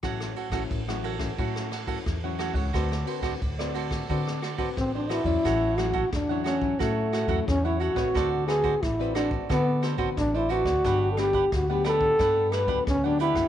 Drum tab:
RD |x-xxx-xxx-xxx-xx|x-xxx-xxx-xxx-xx|----------------|----------------|
HH |----------------|----------------|x-xxx-x-x-xxx-xx|x-xxxxx-x-x-xxx-|
SD |rr-r-r-r-rr-r-r-|rr-r-r-r-rr-r-r-|r-r-r-r-r-r-r--r|r-r-r-r-r-r-r--r|
BD |o--oo--oo--oo--o|o--oo--oo--oo--o|o--oo--oo--oo--o|o--oo--oo--oo--o|

RD |----------------|
HH |x-xxx-x-x-xxx-xx|
SD |r-r-r-r-r-r-r--r|
BD |o--oo--oo--oo--o|